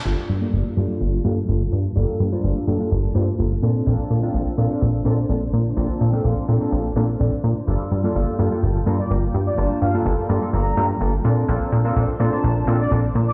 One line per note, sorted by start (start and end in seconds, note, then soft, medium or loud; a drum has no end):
0.05 0.16 G1 loud
0.05 0.39 G3 medium
0.05 0.39 A#3 medium
0.05 3.59 A#3 medium
0.05 0.39 D4 medium
0.05 3.59 F4 medium
0.05 0.39 F4 medium
0.05 0.39 A4 loud
0.05 5.49 A5 medium
0.05 muted clean electric guitar stroke loud
0.18 muted clean electric guitar stroke soft
0.29 0.49 G2 medium
0.29 muted clean electric guitar stroke soft
0.41 0.51 G3 medium
0.41 0.59 A#3 medium
0.41 0.52 A#3 medium
0.41 0.52 D4 medium
0.41 0.60 F4 medium
0.41 0.52 F4 medium
0.41 0.52 A4 medium
0.41 0.60 A#4 medium
0.53 0.64 G1 medium
0.53 0.74 G3 medium
0.53 0.74 A#3 medium
0.53 0.74 D4 medium
0.53 0.74 F4 medium
0.53 0.75 A4 medium
0.77 0.87 G2 medium
0.77 0.87 G3 medium
0.77 1.01 A#3 medium
0.77 0.87 A#3 medium
0.77 0.87 D4 medium
0.77 1.01 F4 medium
0.77 0.87 F4 medium
0.77 0.87 A4 medium
0.77 1.01 A4 medium
0.89 1.22 G3 medium
0.89 1.22 A#3 medium
0.89 1.22 D4 medium
0.89 1.22 F4 medium
0.89 1.22 A5 medium
1.01 1.21 G1 medium
1.24 1.44 G2 medium
1.24 1.34 G3 medium
1.24 1.34 A#3 medium
1.24 1.37 A#3 loud
1.24 1.34 D4 medium
1.24 1.34 F4 medium
1.24 1.37 F4 medium
1.24 1.35 A4 medium
1.24 1.38 A4 loud
1.48 1.68 G1 medium
1.48 1.61 A#3 medium
1.48 1.61 F4 medium
1.48 1.61 A4 medium
1.72 1.92 G2 medium
1.72 muted clean electric guitar stroke soft
1.84 muted clean electric guitar stroke soft
1.96 2.06 G1 medium
1.96 2.29 G3 medium
1.96 2.29 A#3 medium
1.96 2.29 D4 medium
1.96 2.30 F4 medium
1.96 2.30 A4 loud
1.96 muted clean electric guitar stroke loud
2.08 muted clean electric guitar stroke soft
2.19 2.40 G2 medium
2.19 muted clean electric guitar stroke soft
2.32 2.42 G3 medium
2.32 2.50 A#3 medium
2.32 2.42 A#3 medium
2.32 2.42 D4 medium
2.32 2.50 F4 medium
2.32 2.42 F4 medium
2.32 2.42 A4 medium
2.32 2.50 C5 medium
2.43 2.54 G1 medium
2.43 2.65 G3 medium
2.43 2.65 A#3 medium
2.43 2.65 D4 medium
2.43 2.65 F4 medium
2.43 2.65 A4 medium
2.67 2.78 G2 medium
2.67 2.77 G3 medium
2.67 2.91 A#3 medium
2.67 2.77 A#3 medium
2.67 2.77 D4 medium
2.67 2.77 F4 medium
2.67 2.91 F4 medium
2.67 2.77 A4 medium
2.67 2.92 A4 medium
2.79 3.12 G3 medium
2.79 3.12 A#3 medium
2.79 3.12 D4 medium
2.79 3.13 F4 medium
2.79 3.13 A4 medium
2.91 3.11 G1 loud
3.14 3.35 G2 medium
3.14 3.25 G3 medium
3.14 3.25 A#3 medium
3.14 3.28 A#3 loud
3.14 3.25 D4 medium
3.14 3.25 F4 medium
3.14 3.28 F4 medium
3.14 3.25 A4 medium
3.14 3.28 C5 loud
3.38 3.59 G1 medium
3.38 3.51 A#3 medium
3.38 3.52 F4 medium
3.38 3.52 A4 medium
3.62 3.83 A#2 medium
3.62 3.91 C4 medium
3.62 3.92 D4 medium
3.62 7.64 D4 medium
3.62 3.92 A4 medium
3.62 7.64 C5 medium
3.86 3.97 A#1 loud
3.86 4.20 A#3 medium
3.86 4.20 C4 medium
3.86 4.20 D4 medium
3.86 4.20 F4 medium
3.86 4.20 A4 loud
3.99 muted clean electric guitar stroke soft
4.10 4.30 A#2 medium
4.10 muted clean electric guitar stroke soft
4.22 4.32 A#3 medium
4.22 4.40 C4 medium
4.22 4.32 C4 medium
4.22 4.40 D4 medium
4.22 4.32 D4 medium
4.22 4.33 F4 medium
4.22 4.41 F4 medium
4.22 4.33 A4 medium
4.34 4.44 A#1 medium
4.34 4.55 A#3 medium
4.34 4.55 C4 medium
4.34 4.55 D4 medium
4.34 4.55 F4 medium
4.34 4.55 A4 medium
4.57 4.68 A#2 medium
4.57 4.68 A#3 medium
4.57 4.82 C4 medium
4.57 4.68 C4 medium
4.57 4.68 D4 medium
4.57 4.82 D4 medium
4.57 4.68 F4 medium
4.57 4.68 A4 medium
4.57 4.82 A4 medium
4.70 5.03 A#3 medium
4.70 5.03 C4 medium
4.70 5.03 D4 medium
4.70 5.03 F4 medium
4.70 5.03 A4 medium
4.82 5.01 A#1 loud
5.05 5.25 A#2 medium
5.05 5.15 A#3 medium
5.05 5.18 C4 loud
5.05 5.15 C4 medium
5.05 5.15 D4 medium
5.05 5.18 D4 loud
5.05 5.15 F4 medium
5.05 5.16 A4 medium
5.05 5.18 A4 loud
5.29 5.49 A#1 medium
5.29 5.42 C4 medium
5.29 5.42 D4 medium
5.29 5.42 A4 medium
5.53 5.73 A#2 medium
5.53 muted clean electric guitar stroke soft
5.65 muted clean electric guitar stroke soft
5.76 5.87 A#1 medium
5.76 6.10 A#3 medium
5.76 6.10 C4 medium
5.76 6.10 D4 medium
5.76 6.11 F4 medium
5.76 6.11 A4 loud
5.76 muted clean electric guitar stroke loud
5.89 muted clean electric guitar stroke soft
6.00 6.21 A#2 medium
6.00 muted clean electric guitar stroke soft
6.13 6.23 A#3 medium
6.13 6.31 C4 medium
6.13 6.23 C4 medium
6.13 6.23 D4 medium
6.13 6.31 D4 medium
6.13 6.23 F4 medium
6.13 6.23 A4 medium
6.13 6.31 C5 medium
6.24 6.35 A#1 medium
6.24 6.46 A#3 medium
6.24 6.46 C4 medium
6.24 6.46 D4 medium
6.24 6.46 F4 medium
6.24 6.46 A4 medium
6.48 6.59 A#2 medium
6.48 6.58 A#3 medium
6.48 6.72 C4 medium
6.48 6.58 C4 medium
6.48 6.58 D4 medium
6.48 6.72 D4 medium
6.48 6.58 F4 medium
6.48 6.58 A4 medium
6.48 6.73 A4 medium
6.61 6.93 A#3 medium
6.61 6.93 C4 medium
6.61 6.94 D4 medium
6.61 6.94 F4 medium
6.61 6.94 A4 medium
6.72 6.92 A#1 loud
6.96 7.16 A#2 medium
6.96 7.06 A#3 medium
6.96 7.08 C4 loud
6.96 7.06 C4 medium
6.96 7.06 D4 medium
6.96 7.09 D4 loud
6.96 7.06 F4 medium
6.96 7.06 A4 medium
6.96 7.09 A4 loud
7.19 7.30 A#1 medium
7.19 7.32 C4 medium
7.19 7.33 D4 medium
7.19 7.33 A4 medium
7.19 7.64 D5 medium
7.43 7.54 A#2 medium
7.43 muted clean electric guitar stroke soft
7.56 muted clean electric guitar stroke soft
7.67 7.78 G1 loud
7.67 8.01 G3 medium
7.67 11.21 A#3 medium
7.67 8.01 A#3 medium
7.67 8.01 D4 medium
7.67 11.21 F4 medium
7.67 8.01 F4 medium
7.67 8.01 A4 loud
7.67 11.21 G5 medium
7.67 muted clean electric guitar stroke loud
7.80 muted clean electric guitar stroke soft
7.91 8.11 G2 medium
7.91 muted clean electric guitar stroke soft
8.04 8.13 G3 medium
8.04 8.21 A#3 medium
8.04 8.14 A#3 medium
8.04 8.14 D4 medium
8.04 8.21 F4 medium
8.04 8.14 F4 medium
8.04 8.22 A4 medium
8.04 8.14 A4 medium
8.15 8.25 G1 medium
8.15 8.36 G3 medium
8.15 8.36 A#3 medium
8.15 8.36 D4 medium
8.15 8.36 F4 medium
8.15 8.37 A4 medium
8.39 8.49 G2 medium
8.39 8.49 G3 medium
8.39 8.63 A#3 medium
8.39 8.49 A#3 medium
8.39 8.49 D4 medium
8.39 8.63 F4 medium
8.39 8.49 F4 medium
8.39 8.63 A4 medium
8.39 8.49 A4 medium
8.51 8.84 G3 medium
8.51 8.84 A#3 medium
8.51 8.84 D4 medium
8.51 8.84 F4 medium
8.51 8.84 A4 medium
8.63 8.83 G1 loud
8.86 9.06 G2 medium
8.86 8.96 G3 medium
8.86 8.99 A#3 loud
8.86 8.96 A#3 medium
8.86 8.96 D4 medium
8.86 8.99 F4 medium
8.86 8.97 F4 medium
8.86 8.97 A4 loud
8.86 8.99 A#4 loud
8.99 9.13 D5 medium
9.10 9.30 G1 medium
9.10 9.23 A#3 medium
9.10 9.23 F4 medium
9.10 9.23 A#4 medium
9.34 9.54 G2 medium
9.34 muted clean electric guitar stroke soft
9.46 9.61 D5 medium
9.46 muted clean electric guitar stroke soft
9.58 9.68 G1 loud
9.58 9.91 G3 medium
9.58 9.91 A#3 medium
9.58 9.91 D4 medium
9.58 9.91 F4 medium
9.58 9.92 A5 medium
9.58 muted clean electric guitar stroke loud
9.70 muted clean electric guitar stroke soft
9.82 10.01 G2 medium
9.82 9.97 F5 medium
9.82 muted clean electric guitar stroke soft
9.94 10.04 G3 medium
9.94 10.12 A#3 medium
9.94 10.04 A#3 medium
9.94 10.04 D4 medium
9.94 10.04 F4 medium
9.94 10.12 F4 medium
9.94 10.04 A4 medium
9.94 10.12 A4 medium
10.05 10.16 G1 medium
10.05 10.27 G3 medium
10.05 10.27 A#3 medium
10.05 10.27 D4 medium
10.05 10.27 F4 medium
10.05 10.27 A4 medium
10.29 10.40 G2 medium
10.29 10.39 G3 medium
10.29 10.53 A#3 medium
10.29 10.39 A#3 medium
10.29 10.39 D4 medium
10.29 10.39 F4 medium
10.29 10.53 F4 medium
10.29 10.39 A4 medium
10.29 10.54 A4 medium
10.42 10.74 G3 medium
10.42 10.74 A#3 medium
10.42 10.74 D4 medium
10.42 10.75 F4 medium
10.42 10.75 A4 medium
10.53 10.73 G1 loud
10.53 11.01 A#5 medium
10.77 10.97 G2 medium
10.77 10.87 G3 medium
10.77 10.89 A#3 loud
10.77 10.87 A#3 medium
10.77 10.87 D4 medium
10.77 10.90 F4 loud
10.77 10.87 F4 medium
10.77 10.90 G4 loud
10.77 10.87 A4 medium
11.01 11.21 G1 medium
11.01 11.13 A#3 medium
11.01 11.14 F4 medium
11.01 11.14 A4 medium
11.24 11.44 A#2 medium
11.24 11.53 C4 medium
11.24 13.33 D4 medium
11.24 11.54 D4 medium
11.24 11.54 A4 loud
11.24 13.13 C5 medium
11.24 13.33 A5 medium
11.48 11.59 A#1 medium
11.48 11.82 A#3 medium
11.48 11.82 C4 medium
11.48 11.82 D4 medium
11.48 11.82 F4 medium
11.48 11.82 A4 loud
11.61 muted clean electric guitar stroke soft
11.72 11.92 A#2 medium
11.72 muted clean electric guitar stroke soft
11.84 11.94 A#3 medium
11.84 12.02 C4 medium
11.84 11.94 C4 medium
11.84 11.94 D4 medium
11.84 12.02 D4 medium
11.84 11.94 F4 medium
11.84 11.95 A4 medium
11.84 12.03 A#4 medium
11.96 12.06 A#1 medium
11.96 12.17 A#3 medium
11.96 12.17 C4 medium
11.96 12.17 D4 medium
11.96 12.17 F4 medium
11.96 12.17 A4 medium
12.19 12.30 A#2 medium
12.19 12.29 A#3 medium
12.19 12.43 C4 medium
12.19 12.30 C4 medium
12.19 12.30 D4 medium
12.19 12.44 D4 medium
12.19 12.30 F4 medium
12.19 12.30 A4 medium
12.19 12.44 A4 medium
12.32 12.65 A#3 medium
12.32 12.65 C4 medium
12.32 12.65 D4 medium
12.32 12.65 F4 medium
12.32 12.65 A5 medium
12.44 12.63 A#1 loud
12.67 12.87 A#2 medium
12.67 12.77 A#3 medium
12.67 12.80 C4 loud
12.67 12.77 C4 medium
12.67 12.80 D4 loud
12.67 12.77 D4 medium
12.67 12.77 F4 medium
12.67 12.77 A4 medium
12.67 12.80 A4 loud
12.80 12.94 D5 medium
12.91 13.11 A#1 medium
12.91 13.04 C4 medium
12.91 13.04 D4 medium
12.91 13.04 A4 loud
13.15 13.33 A#2 medium
13.15 13.33 D5 medium
13.15 muted clean electric guitar stroke soft
13.27 13.33 D5 medium
13.27 muted clean electric guitar stroke soft